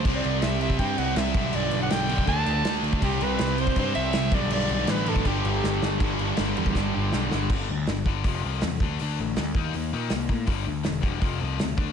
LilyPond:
<<
  \new Staff \with { instrumentName = "Soprano saxophone" } { \time 4/4 \key g \major \tempo 4 = 161 c''16 d''8. e''8 e''8 g''8 fis''8 e''4 | d''8. fis''16 g''4 a''4. r8 | g'8 b'4 c''8 c''8 e''4 d''8 | d''4 b'8 a'8 g'4. r8 |
r1 | r1 | r1 | r1 | }
  \new Staff \with { instrumentName = "Distorted electric guitar" } { \clef bass \time 4/4 \key g \major <c g c'>2.~ <c g c'>8 <g, d g>8~ | <g, d g>2 <d a d'>2 | <c g c'>2.~ <c g c'>8 <g, d g>8~ | <g, d g>2 <g, d g>2 |
<g, d g>8 <g, d g>8 <g, d g>8 <g, d g>8 <g, d g>8 <g, d g>8 <g, d g>8 <g, d g>8 | <g, d g>8 <g, d>8 <g, d>8 <g, d g>8 <f, c f>8 <f, c f>8 <f, c>8 <d a d'>8 | <d a d'>8 <d a>8 <d a>8 <ees bes ees'>8 <ees bes>8 <ees bes ees'>8 <ees bes>8 <ees bes>8 | <g, d g>8 <g, d>8 <g, d>8 <g, d g>8 <f, c f>8 <f, c f>8 <f, c>8 <d a d'>8 | }
  \new Staff \with { instrumentName = "Distorted electric guitar" } { \clef bass \time 4/4 \key g \major <c g c'>2 <c g c'>4. <g, d g>8~ | <g, d g>4. <g, d g>8 <d a d'>2 | <c g c'>2 <c g c'>4. <g, d g>8~ | <g, d g>4. <g, d g>8 <g, d g>2 |
<g, d g>8 <g, d g>8 <g, d g>8 <g, d g>8 <g, d g>8 <g, d g>8 <g, d g>8 <g, d g>8 | r1 | r1 | r1 | }
  \new Staff \with { instrumentName = "Distorted electric guitar" } { \clef bass \time 4/4 \key g \major <c g c'>2 <c g c'>4. <g, d g>8~ | <g, d g>4. <g, d g>8 <d a d'>2 | <c g c'>2 <c g c'>4. <g, d g>8~ | <g, d g>4. <g, d g>8 <g, d g>2 |
<g, d g>4. <g, d g>2~ <g, d g>8 | r1 | r1 | r1 | }
  \new Staff \with { instrumentName = "Picked electric bass" } { \clef bass \time 4/4 \key g \major c,8 c,8 c,4 g,8 c,8 c,8 b,,8 | b,,8 b,,8 b,,4 d,8 d,8 d,8 d,8 | c,8 c,8 c,4 g,8 c,8 c,8 b,,8 | b,,8 b,,8 a,,4 g,,8 g,,8 g,,8 g,,8 |
g,,4 g,,8 e,8 g,,8 g,,8 b,,8 g,,8 | g,,8 d,8 g,,4 f,,8 c,8 e,8 d,8 | d,8 a,,8 d,8 ees,8 ees,8 bes,8 c,8 a,8 | g,,8 d,8 e,,4 f,,8 c,8 d,8 d,8 | }
  \new DrumStaff \with { instrumentName = "Drums" } \drummode { \time 4/4 <cymc bd>8 cymc8 <cymc sn>8 cymc16 bd16 <cymc bd>8 cymc8 <cymc sn>8 <cymc bd>8 | cymc8 cymc8 <cymc sn>8 cymc16 bd16 <cymc bd>8 cymc8 <cymc sn>8 cymc16 bd16 | <cymc bd>8 cymc8 <cymc sn>8 cymc16 bd16 <cymc bd>8 cymc8 <cymc sn>8 <cymc bd>8 | cymc8 cymc8 <cymc sn>8 cymc16 bd16 <cymc bd>8 cymc8 sn8 sn8 |
<cymc bd>8 cymc8 <cymc sn>8 cymc16 bd16 <bd sn>4 sn8 sn8 | <cymc bd>4 <hho sn>8 bd8 <hho bd>4 <hho sn>8 bd8 | hho4 <hho sn>8 bd8 hho4 <hho sn>8 bd8 | <hho bd>4 <hho sn>8 bd8 <hho bd>4 <hho sn>8 bd8 | }
>>